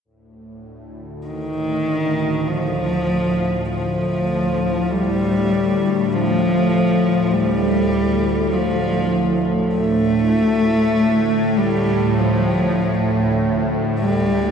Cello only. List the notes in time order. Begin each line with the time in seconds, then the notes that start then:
1.27 D#3
2.48 F3
3.71 F3
4.91 G3
6.13 F3
7.32 G3
8.53 F3
9.74 A3
11.56 G3
12.19 F3
13.99 G3